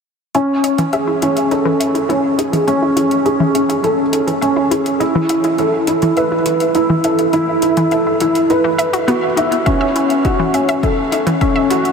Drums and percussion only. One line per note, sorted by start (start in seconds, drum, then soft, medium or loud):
0.35 closed hi-hat soft
0.64 closed hi-hat medium
0.78 closed hi-hat soft
0.93 closed hi-hat soft
1.22 closed hi-hat medium
1.37 closed hi-hat soft
1.51 closed hi-hat soft
1.81 closed hi-hat medium
1.95 closed hi-hat soft
2.10 closed hi-hat soft
2.39 closed hi-hat medium
2.53 closed hi-hat soft
2.68 closed hi-hat soft
2.97 closed hi-hat medium
3.11 closed hi-hat soft
3.26 closed hi-hat soft
3.55 closed hi-hat medium
3.70 closed hi-hat soft
3.84 closed hi-hat soft
4.13 closed hi-hat medium
4.28 closed hi-hat soft
4.42 closed hi-hat soft
4.71 closed hi-hat medium
4.86 closed hi-hat soft
5.01 closed hi-hat soft
5.29 closed hi-hat medium
5.44 closed hi-hat soft
5.58 closed hi-hat soft
5.87 closed hi-hat medium
6.02 closed hi-hat soft
6.17 closed hi-hat soft
6.46 closed hi-hat medium
6.60 closed hi-hat soft
6.75 closed hi-hat soft
7.04 closed hi-hat medium
7.19 closed hi-hat soft
7.33 closed hi-hat soft
7.62 closed hi-hat medium
7.77 closed hi-hat soft
7.91 closed hi-hat soft
8.20 closed hi-hat medium
8.35 closed hi-hat soft
8.50 closed hi-hat soft
8.79 closed hi-hat medium
8.94 closed hi-hat soft
9.08 closed hi-hat soft
9.37 closed hi-hat medium
9.52 closed hi-hat soft
9.66 kick medium
9.66 closed hi-hat soft
9.96 closed hi-hat medium
10.10 closed hi-hat soft
10.25 kick medium
10.25 closed hi-hat soft
10.54 closed hi-hat medium
10.69 closed hi-hat soft
10.83 kick medium
10.83 closed hi-hat soft
11.12 closed hi-hat medium
11.27 closed hi-hat soft
11.41 kick medium
11.41 closed hi-hat soft
11.70 closed hi-hat medium
11.85 closed hi-hat soft